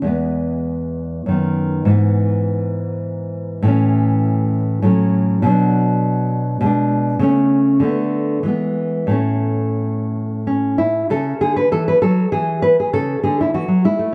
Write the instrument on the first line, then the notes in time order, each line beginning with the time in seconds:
nylon-string guitar
0.02 E2 G#3
0.06 B3
1.26 F#2 D#3
1.31 B3
1.85 G#2 E3
1.90 B3
3.63 A2 E3
3.68 C#4
4.82 A2 F#3
4.87 C#4
5.42 B2 F#3
5.47 D4
6.61 B2 G#3
6.66 D4
7.19 C#3 A3 C#4
7.80 D3 A3
7.84 B3
8.43 E3 G#3
8.48 B3
9.07 A2 A3 C#4
10.47 C#4
10.78 E4
11.10 C#3 A4
11.41 D3 G#4
11.56 B4
11.72 E3 A4
11.88 B4
12.02 F#3 A4
12.32 E3 G#4
12.62 B4
12.80 G#4
12.93 C#3 A4
13.24 D3 G#4
13.41 E4
13.54 E3 F#4
13.68 F#3
13.84 G#3 E4
13.99 A3